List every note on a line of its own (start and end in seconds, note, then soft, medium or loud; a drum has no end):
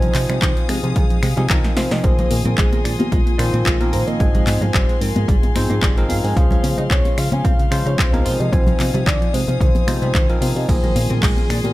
0.00 1.20 F3 medium
0.00 0.12 F3 medium
0.00 1.21 C4 medium
0.00 1.21 D#4 medium
0.00 0.71 C5 loud
0.00 2.01 F5 medium
0.00 1.21 G#5 medium
0.00 6.32 G#5 medium
0.00 2.02 D#6 medium
0.00 closed hi-hat soft
0.15 0.26 C3 loud
0.15 0.19 F3 medium
0.15 clap medium
0.15 open hi-hat loud
0.29 0.39 C3 loud
0.29 0.33 G3 loud
0.29 finger snap medium
0.29 closed hi-hat soft
0.42 0.54 C2 medium
0.42 0.53 D#3 medium
0.42 kick loud
0.42 clap loud
0.42 closed hi-hat medium
0.57 0.63 F3 medium
0.57 closed hi-hat soft
0.69 0.80 C3 medium
0.69 0.76 G#3 medium
0.69 1.50 G#4 loud
0.69 finger snap medium
0.69 open hi-hat loud
0.83 0.93 C3 medium
0.83 0.93 F3 medium
0.83 closed hi-hat soft
0.96 1.08 C2 medium
0.96 1.03 D#3 medium
0.96 kick loud
0.96 closed hi-hat medium
1.10 1.17 F2 medium
1.10 closed hi-hat soft
1.23 1.34 C3 medium
1.23 1.27 G#3 loud
1.23 finger snap medium
1.23 open hi-hat loud
1.37 1.47 C3 loud
1.37 1.47 F3 medium
1.37 1.41 G3 loud
1.37 1.47 G#3 medium
1.37 1.47 C4 medium
1.37 1.47 D#4 medium
1.37 1.47 G#4 loud
1.37 closed hi-hat soft
1.49 1.62 C2 loud
1.49 1.61 D#3 medium
1.49 2.01 F3 medium
1.49 2.01 C4 medium
1.49 2.01 D#4 medium
1.49 2.01 A#4 medium
1.49 kick loud
1.49 clap loud
1.49 closed hi-hat medium
1.64 1.71 F3 medium
1.64 snare medium
1.64 closed hi-hat soft
1.77 1.89 C3 loud
1.77 1.84 F4 loud
1.77 1.93 C5 medium
1.77 snare medium
1.77 open hi-hat loud
1.91 2.02 C3 medium
1.91 2.01 F3 medium
1.91 2.03 D#5 loud
1.91 snare medium
1.91 open hi-hat medium
2.03 2.26 A#1 loud
2.03 3.37 D#3 medium
2.03 3.36 F3 medium
2.03 3.36 A#3 medium
2.03 2.11 A#3 medium
2.03 3.37 C4 medium
2.03 3.37 G#4 medium
2.03 2.43 C5 loud
2.03 6.33 C6 medium
2.03 4.18 D#6 medium
2.03 kick loud
2.03 closed hi-hat medium
2.19 2.28 A#3 medium
2.19 closed hi-hat soft
2.19 low conga loud
2.30 2.43 A#2 loud
2.30 2.35 A#3 medium
2.30 open hi-hat loud
2.30 high conga medium
2.45 2.55 A#2 loud
2.45 2.49 C4 loud
2.45 2.58 A#4 loud
2.45 closed hi-hat soft
2.45 low conga loud
2.58 2.70 A#1 medium
2.58 2.69 G#3 medium
2.58 2.97 G#4 loud
2.58 kick loud
2.58 clap loud
2.58 closed hi-hat medium
2.72 2.79 A#3 medium
2.72 closed hi-hat soft
2.72 muted conga medium
2.84 2.97 A#2 medium
2.84 2.92 D4 medium
2.84 finger snap medium
2.84 open hi-hat loud
2.99 3.09 A#2 medium
2.99 3.09 A#3 medium
2.99 3.05 G4 medium
2.99 closed hi-hat soft
2.99 muted conga medium
2.99 high conga loud
3.12 3.24 A#1 medium
3.12 3.19 G#3 medium
3.12 3.90 F4 loud
3.12 kick loud
3.12 closed hi-hat medium
3.26 3.33 A#2 medium
3.26 closed hi-hat soft
3.38 3.51 A#2 medium
3.38 3.77 D#3 medium
3.38 3.77 F3 medium
3.38 3.77 A#3 medium
3.38 3.77 C4 medium
3.38 3.43 D4 loud
3.38 3.78 C5 medium
3.38 finger snap medium
3.38 open hi-hat loud
3.53 3.64 A#2 loud
3.53 3.57 C4 loud
3.53 closed hi-hat soft
3.66 3.94 A#1 medium
3.66 3.77 G#3 medium
3.66 kick loud
3.66 clap loud
3.66 closed hi-hat medium
3.80 4.17 D#3 medium
3.80 4.17 F3 medium
3.80 3.87 A#3 medium
3.80 4.17 A#3 medium
3.80 4.17 C4 medium
3.80 4.18 A#4 loud
3.80 closed hi-hat soft
3.80 high conga medium
3.93 4.05 A#2 loud
3.93 4.00 A#4 loud
3.93 4.08 C5 loud
3.93 open hi-hat loud
4.07 4.17 A#2 loud
4.07 4.17 A#3 medium
4.07 4.63 D#5 loud
4.07 closed hi-hat soft
4.19 4.42 G#1 loud
4.19 5.53 F3 medium
4.19 4.27 G#3 medium
4.19 5.53 C4 medium
4.19 5.53 D#4 medium
4.19 10.65 F5 medium
4.19 5.53 G#5 medium
4.19 kick loud
4.19 closed hi-hat medium
4.34 4.44 G#3 medium
4.34 closed hi-hat soft
4.34 low conga loud
4.47 4.59 G#2 loud
4.47 4.51 G#3 medium
4.47 clap medium
4.47 open hi-hat loud
4.47 high conga medium
4.61 4.72 G#2 loud
4.61 4.65 A#3 loud
4.61 5.02 C5 loud
4.61 closed hi-hat soft
4.61 low conga loud
4.74 4.86 G#1 medium
4.74 4.85 G3 medium
4.74 kick loud
4.74 clap loud
4.74 closed hi-hat medium
4.89 4.95 G#3 medium
4.89 closed hi-hat soft
5.01 5.13 G#2 medium
5.01 5.09 C4 medium
5.01 5.27 A#4 loud
5.01 open hi-hat loud
5.16 5.26 G#2 medium
5.16 5.25 G#3 medium
5.16 closed hi-hat soft
5.16 muted conga medium
5.16 high conga loud
5.28 5.40 G#1 medium
5.28 5.36 G3 medium
5.28 6.05 G#4 loud
5.28 kick loud
5.28 closed hi-hat medium
5.43 5.49 G#2 medium
5.43 closed hi-hat soft
5.43 muted conga medium
5.55 5.67 G#2 medium
5.55 5.94 F3 medium
5.55 5.60 C4 loud
5.55 5.94 C4 medium
5.55 5.94 D#4 medium
5.55 5.94 C5 loud
5.55 finger snap medium
5.55 open hi-hat loud
5.55 high conga loud
5.70 5.80 G#2 loud
5.70 5.74 A#3 loud
5.70 closed hi-hat soft
5.70 muted conga medium
5.82 6.11 G#1 medium
5.82 5.93 G3 medium
5.82 kick loud
5.82 clap loud
5.82 closed hi-hat medium
5.97 6.33 F3 medium
5.97 6.03 G#3 medium
5.97 6.34 C4 medium
5.97 6.34 D#4 medium
5.97 6.34 A#4 loud
5.97 closed hi-hat soft
6.09 6.21 G#2 loud
6.09 6.17 G#4 loud
6.09 6.25 F5 loud
6.09 open hi-hat loud
6.09 high conga medium
6.24 6.34 G#2 loud
6.24 6.33 G#3 medium
6.24 6.38 G#5 loud
6.24 open hi-hat medium
6.36 6.58 C#2 loud
6.36 7.69 F3 medium
6.36 7.69 G#3 medium
6.36 8.24 C4 medium
6.36 6.44 C#4 medium
6.36 7.70 G#4 medium
6.36 7.69 C5 medium
6.36 6.77 F5 loud
6.36 8.24 C6 medium
6.36 kick loud
6.36 closed hi-hat medium
6.51 6.60 C#4 medium
6.51 closed hi-hat soft
6.51 low conga loud
6.63 6.75 C#3 loud
6.63 6.68 C#4 medium
6.63 open hi-hat loud
6.63 high conga medium
6.78 6.88 C#3 loud
6.78 6.82 D#4 loud
6.78 6.83 D#5 loud
6.78 closed hi-hat soft
6.78 low conga medium
6.90 7.02 C#2 medium
6.90 7.01 C4 medium
6.90 7.20 C#5 loud
6.90 kick loud
6.90 clap loud
6.90 closed hi-hat medium
7.05 7.11 C#4 medium
7.05 closed hi-hat soft
7.05 muted conga medium
7.18 7.29 C#3 medium
7.18 7.25 F4 medium
7.18 7.34 F5 loud
7.18 finger snap medium
7.18 open hi-hat loud
7.32 7.42 C#3 medium
7.32 7.41 C#4 medium
7.32 7.46 G#5 loud
7.32 closed hi-hat soft
7.32 muted conga medium
7.32 high conga loud
7.44 7.56 C#2 medium
7.44 7.52 C4 medium
7.44 7.88 F5 loud
7.44 kick loud
7.44 closed hi-hat medium
7.59 7.65 C#3 medium
7.59 closed hi-hat soft
7.71 7.83 C#3 medium
7.71 8.09 F3 medium
7.71 8.10 G#3 medium
7.71 7.76 F4 loud
7.71 8.10 C5 loud
7.71 finger snap medium
7.71 open hi-hat loud
7.86 7.96 C#3 loud
7.86 7.90 D#4 loud
7.86 8.00 C#5 loud
7.86 closed hi-hat soft
7.98 8.27 C#2 medium
7.98 8.09 C4 medium
7.98 8.25 C5 loud
7.98 kick loud
7.98 clap loud
7.98 closed hi-hat medium
8.13 8.49 F3 medium
8.13 8.50 G#3 medium
8.13 8.50 C4 medium
8.13 8.19 C#4 medium
8.13 8.50 D#4 medium
8.13 8.50 A#4 loud
8.13 closed hi-hat soft
8.13 high conga medium
8.25 8.37 C3 medium
8.25 8.33 F4 loud
8.25 8.41 C5 loud
8.25 11.73 G#5 medium
8.25 10.66 D#6 medium
8.25 open hi-hat loud
8.39 8.50 C3 loud
8.39 8.50 F3 medium
8.39 8.53 D#5 loud
8.39 closed hi-hat soft
8.52 8.74 C2 loud
8.52 9.85 F3 medium
8.52 8.60 F3 medium
8.52 9.85 C4 medium
8.52 9.86 D#4 medium
8.52 9.08 C5 loud
8.52 9.86 G#5 medium
8.52 kick loud
8.52 closed hi-hat medium
8.67 8.77 F3 medium
8.67 closed hi-hat soft
8.67 low conga loud
8.79 8.91 C3 loud
8.79 8.84 F3 medium
8.79 clap medium
8.79 open hi-hat loud
8.79 high conga medium
8.94 9.04 C3 loud
8.94 8.98 G3 loud
8.94 closed hi-hat soft
8.94 low conga medium
9.06 9.18 C2 medium
9.06 9.18 D#3 medium
9.06 9.35 D5 loud
9.06 kick loud
9.06 clap loud
9.06 closed hi-hat medium
9.21 9.27 F3 medium
9.21 closed hi-hat soft
9.33 9.45 C3 medium
9.33 9.41 G#3 medium
9.33 10.41 C5 loud
9.33 open hi-hat loud
9.48 9.58 C3 medium
9.48 9.57 F3 medium
9.48 closed hi-hat soft
9.48 muted conga medium
9.48 high conga medium
9.60 9.72 C2 medium
9.60 9.68 D#3 medium
9.60 kick loud
9.60 closed hi-hat medium
9.75 9.82 F2 medium
9.75 closed hi-hat soft
9.75 muted conga medium
9.87 9.99 C3 medium
9.87 10.26 F3 medium
9.87 9.92 G#3 loud
9.87 10.26 G#3 medium
9.87 10.26 C4 medium
9.87 10.26 D#4 medium
9.87 10.26 C5 medium
9.87 finger snap medium
9.87 open hi-hat loud
9.87 high conga medium
10.02 10.12 C3 loud
10.02 10.06 G3 loud
10.02 closed hi-hat soft
10.02 muted conga medium
10.14 10.26 C2 loud
10.14 10.26 D#3 medium
10.14 kick loud
10.14 clap loud
10.14 closed hi-hat medium
10.29 10.66 F3 medium
10.29 10.36 F3 medium
10.29 10.66 C4 medium
10.29 10.66 D#4 medium
10.29 10.66 A#4 loud
10.29 closed hi-hat soft
10.41 10.53 C3 loud
10.41 10.49 F4 loud
10.41 10.55 C5 medium
10.41 open hi-hat loud
10.41 high conga medium
10.56 10.66 C3 medium
10.56 10.66 F3 medium
10.56 10.69 D#5 medium
10.56 open hi-hat medium
10.68 10.91 A#1 loud
10.68 11.73 D#3 medium
10.68 11.73 F3 medium
10.68 11.73 A#3 medium
10.68 10.76 A#3 medium
10.68 11.73 C4 medium
10.68 11.73 G#4 medium
10.68 11.09 C5 loud
10.68 11.73 C6 medium
10.68 11.73 D#6 medium
10.68 kick loud
10.68 closed hi-hat medium
10.68 ride medium
10.83 10.93 A#3 medium
10.83 closed hi-hat soft
10.83 low conga medium
10.96 11.07 A#2 loud
10.96 11.00 A#3 medium
10.96 open hi-hat loud
10.96 high conga medium
11.10 11.21 A#2 loud
11.10 11.14 C4 loud
11.10 11.22 A#4 loud
11.10 closed hi-hat soft
11.10 low conga medium
11.23 11.35 A#1 medium
11.23 11.34 G#3 medium
11.23 11.66 G#4 loud
11.23 kick loud
11.23 clap loud
11.23 closed hi-hat medium
11.23 ride medium
11.37 11.44 A#3 medium
11.37 closed hi-hat soft
11.37 muted conga medium
11.50 11.62 A#2 medium
11.50 11.58 D4 medium
11.50 finger snap medium
11.50 open hi-hat loud
11.64 11.73 A#2 medium
11.64 11.73 A#3 medium
11.64 11.73 G4 medium
11.64 closed hi-hat soft
11.64 muted conga medium
11.64 high conga medium